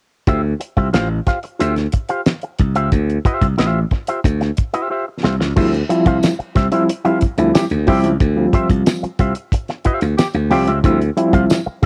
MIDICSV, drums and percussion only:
0, 0, Header, 1, 2, 480
1, 0, Start_track
1, 0, Key_signature, -1, "minor"
1, 0, Tempo, 660066
1, 199, Time_signature, 4, 2, 24, 8
1, 8622, End_track
2, 0, Start_track
2, 0, Title_t, "Drums"
2, 198, Note_on_c, 9, 42, 68
2, 199, Note_on_c, 9, 36, 106
2, 271, Note_off_c, 9, 42, 0
2, 272, Note_off_c, 9, 36, 0
2, 441, Note_on_c, 9, 42, 81
2, 514, Note_off_c, 9, 42, 0
2, 558, Note_on_c, 9, 36, 74
2, 559, Note_on_c, 9, 42, 52
2, 631, Note_off_c, 9, 36, 0
2, 632, Note_off_c, 9, 42, 0
2, 680, Note_on_c, 9, 42, 75
2, 685, Note_on_c, 9, 38, 94
2, 753, Note_off_c, 9, 42, 0
2, 757, Note_off_c, 9, 38, 0
2, 920, Note_on_c, 9, 42, 78
2, 921, Note_on_c, 9, 36, 80
2, 929, Note_on_c, 9, 38, 37
2, 993, Note_off_c, 9, 42, 0
2, 994, Note_off_c, 9, 36, 0
2, 1002, Note_off_c, 9, 38, 0
2, 1039, Note_on_c, 9, 42, 61
2, 1111, Note_off_c, 9, 42, 0
2, 1166, Note_on_c, 9, 42, 89
2, 1239, Note_off_c, 9, 42, 0
2, 1282, Note_on_c, 9, 42, 30
2, 1286, Note_on_c, 9, 38, 30
2, 1354, Note_off_c, 9, 42, 0
2, 1359, Note_off_c, 9, 38, 0
2, 1398, Note_on_c, 9, 42, 68
2, 1407, Note_on_c, 9, 36, 73
2, 1471, Note_off_c, 9, 42, 0
2, 1480, Note_off_c, 9, 36, 0
2, 1518, Note_on_c, 9, 42, 54
2, 1590, Note_off_c, 9, 42, 0
2, 1643, Note_on_c, 9, 42, 80
2, 1647, Note_on_c, 9, 38, 113
2, 1716, Note_off_c, 9, 42, 0
2, 1719, Note_off_c, 9, 38, 0
2, 1757, Note_on_c, 9, 42, 33
2, 1830, Note_off_c, 9, 42, 0
2, 1881, Note_on_c, 9, 42, 75
2, 1888, Note_on_c, 9, 36, 100
2, 1954, Note_off_c, 9, 42, 0
2, 1961, Note_off_c, 9, 36, 0
2, 2004, Note_on_c, 9, 42, 48
2, 2077, Note_off_c, 9, 42, 0
2, 2124, Note_on_c, 9, 42, 72
2, 2125, Note_on_c, 9, 36, 97
2, 2196, Note_off_c, 9, 42, 0
2, 2197, Note_off_c, 9, 36, 0
2, 2253, Note_on_c, 9, 42, 33
2, 2325, Note_off_c, 9, 42, 0
2, 2364, Note_on_c, 9, 36, 97
2, 2368, Note_on_c, 9, 42, 75
2, 2437, Note_off_c, 9, 36, 0
2, 2441, Note_off_c, 9, 42, 0
2, 2484, Note_on_c, 9, 36, 91
2, 2485, Note_on_c, 9, 42, 49
2, 2557, Note_off_c, 9, 36, 0
2, 2558, Note_off_c, 9, 42, 0
2, 2608, Note_on_c, 9, 42, 80
2, 2613, Note_on_c, 9, 38, 89
2, 2681, Note_off_c, 9, 42, 0
2, 2685, Note_off_c, 9, 38, 0
2, 2844, Note_on_c, 9, 42, 79
2, 2846, Note_on_c, 9, 36, 88
2, 2853, Note_on_c, 9, 38, 41
2, 2917, Note_off_c, 9, 42, 0
2, 2919, Note_off_c, 9, 36, 0
2, 2926, Note_off_c, 9, 38, 0
2, 2962, Note_on_c, 9, 42, 61
2, 3035, Note_off_c, 9, 42, 0
2, 3086, Note_on_c, 9, 36, 95
2, 3091, Note_on_c, 9, 42, 91
2, 3158, Note_off_c, 9, 36, 0
2, 3163, Note_off_c, 9, 42, 0
2, 3207, Note_on_c, 9, 42, 27
2, 3211, Note_on_c, 9, 38, 29
2, 3279, Note_off_c, 9, 42, 0
2, 3284, Note_off_c, 9, 38, 0
2, 3323, Note_on_c, 9, 42, 67
2, 3332, Note_on_c, 9, 36, 81
2, 3396, Note_off_c, 9, 42, 0
2, 3405, Note_off_c, 9, 36, 0
2, 3445, Note_on_c, 9, 42, 48
2, 3517, Note_off_c, 9, 42, 0
2, 3814, Note_on_c, 9, 38, 81
2, 3886, Note_off_c, 9, 38, 0
2, 3932, Note_on_c, 9, 38, 70
2, 4005, Note_off_c, 9, 38, 0
2, 4046, Note_on_c, 9, 49, 91
2, 4048, Note_on_c, 9, 36, 109
2, 4119, Note_off_c, 9, 49, 0
2, 4121, Note_off_c, 9, 36, 0
2, 4176, Note_on_c, 9, 42, 35
2, 4249, Note_off_c, 9, 42, 0
2, 4292, Note_on_c, 9, 42, 89
2, 4364, Note_off_c, 9, 42, 0
2, 4406, Note_on_c, 9, 36, 97
2, 4406, Note_on_c, 9, 42, 60
2, 4479, Note_off_c, 9, 36, 0
2, 4479, Note_off_c, 9, 42, 0
2, 4528, Note_on_c, 9, 54, 95
2, 4532, Note_on_c, 9, 42, 89
2, 4536, Note_on_c, 9, 38, 96
2, 4601, Note_off_c, 9, 54, 0
2, 4604, Note_off_c, 9, 42, 0
2, 4609, Note_off_c, 9, 38, 0
2, 4653, Note_on_c, 9, 42, 38
2, 4726, Note_off_c, 9, 42, 0
2, 4767, Note_on_c, 9, 42, 78
2, 4768, Note_on_c, 9, 36, 96
2, 4776, Note_on_c, 9, 38, 39
2, 4840, Note_off_c, 9, 42, 0
2, 4841, Note_off_c, 9, 36, 0
2, 4849, Note_off_c, 9, 38, 0
2, 4884, Note_on_c, 9, 42, 71
2, 4957, Note_off_c, 9, 42, 0
2, 5013, Note_on_c, 9, 42, 94
2, 5086, Note_off_c, 9, 42, 0
2, 5127, Note_on_c, 9, 42, 29
2, 5200, Note_off_c, 9, 42, 0
2, 5242, Note_on_c, 9, 42, 66
2, 5252, Note_on_c, 9, 36, 80
2, 5315, Note_off_c, 9, 42, 0
2, 5325, Note_off_c, 9, 36, 0
2, 5364, Note_on_c, 9, 42, 54
2, 5437, Note_off_c, 9, 42, 0
2, 5489, Note_on_c, 9, 42, 100
2, 5492, Note_on_c, 9, 38, 118
2, 5492, Note_on_c, 9, 54, 92
2, 5562, Note_off_c, 9, 42, 0
2, 5564, Note_off_c, 9, 54, 0
2, 5565, Note_off_c, 9, 38, 0
2, 5599, Note_on_c, 9, 42, 38
2, 5672, Note_off_c, 9, 42, 0
2, 5722, Note_on_c, 9, 46, 86
2, 5730, Note_on_c, 9, 36, 110
2, 5795, Note_off_c, 9, 46, 0
2, 5803, Note_off_c, 9, 36, 0
2, 5845, Note_on_c, 9, 42, 54
2, 5917, Note_off_c, 9, 42, 0
2, 5965, Note_on_c, 9, 36, 123
2, 5965, Note_on_c, 9, 42, 73
2, 6037, Note_off_c, 9, 42, 0
2, 6038, Note_off_c, 9, 36, 0
2, 6204, Note_on_c, 9, 36, 98
2, 6206, Note_on_c, 9, 42, 79
2, 6276, Note_off_c, 9, 36, 0
2, 6279, Note_off_c, 9, 42, 0
2, 6323, Note_on_c, 9, 36, 93
2, 6324, Note_on_c, 9, 42, 57
2, 6396, Note_off_c, 9, 36, 0
2, 6397, Note_off_c, 9, 42, 0
2, 6446, Note_on_c, 9, 42, 88
2, 6447, Note_on_c, 9, 54, 109
2, 6451, Note_on_c, 9, 38, 106
2, 6519, Note_off_c, 9, 42, 0
2, 6520, Note_off_c, 9, 54, 0
2, 6523, Note_off_c, 9, 38, 0
2, 6572, Note_on_c, 9, 42, 36
2, 6645, Note_off_c, 9, 42, 0
2, 6682, Note_on_c, 9, 42, 86
2, 6684, Note_on_c, 9, 36, 101
2, 6755, Note_off_c, 9, 42, 0
2, 6757, Note_off_c, 9, 36, 0
2, 6799, Note_on_c, 9, 42, 61
2, 6872, Note_off_c, 9, 42, 0
2, 6923, Note_on_c, 9, 36, 93
2, 6928, Note_on_c, 9, 42, 103
2, 6995, Note_off_c, 9, 36, 0
2, 7001, Note_off_c, 9, 42, 0
2, 7042, Note_on_c, 9, 42, 28
2, 7047, Note_on_c, 9, 38, 33
2, 7115, Note_off_c, 9, 42, 0
2, 7119, Note_off_c, 9, 38, 0
2, 7160, Note_on_c, 9, 42, 67
2, 7169, Note_on_c, 9, 36, 83
2, 7233, Note_off_c, 9, 42, 0
2, 7242, Note_off_c, 9, 36, 0
2, 7281, Note_on_c, 9, 42, 55
2, 7353, Note_off_c, 9, 42, 0
2, 7406, Note_on_c, 9, 54, 100
2, 7407, Note_on_c, 9, 42, 92
2, 7411, Note_on_c, 9, 38, 112
2, 7479, Note_off_c, 9, 54, 0
2, 7480, Note_off_c, 9, 42, 0
2, 7483, Note_off_c, 9, 38, 0
2, 7516, Note_on_c, 9, 42, 37
2, 7589, Note_off_c, 9, 42, 0
2, 7640, Note_on_c, 9, 46, 75
2, 7713, Note_off_c, 9, 46, 0
2, 7762, Note_on_c, 9, 42, 53
2, 7835, Note_off_c, 9, 42, 0
2, 7882, Note_on_c, 9, 36, 112
2, 7884, Note_on_c, 9, 42, 80
2, 7955, Note_off_c, 9, 36, 0
2, 7956, Note_off_c, 9, 42, 0
2, 8010, Note_on_c, 9, 42, 37
2, 8083, Note_off_c, 9, 42, 0
2, 8125, Note_on_c, 9, 42, 86
2, 8198, Note_off_c, 9, 42, 0
2, 8240, Note_on_c, 9, 36, 99
2, 8244, Note_on_c, 9, 42, 55
2, 8313, Note_off_c, 9, 36, 0
2, 8316, Note_off_c, 9, 42, 0
2, 8361, Note_on_c, 9, 54, 105
2, 8366, Note_on_c, 9, 42, 90
2, 8371, Note_on_c, 9, 38, 93
2, 8434, Note_off_c, 9, 54, 0
2, 8439, Note_off_c, 9, 42, 0
2, 8443, Note_off_c, 9, 38, 0
2, 8622, End_track
0, 0, End_of_file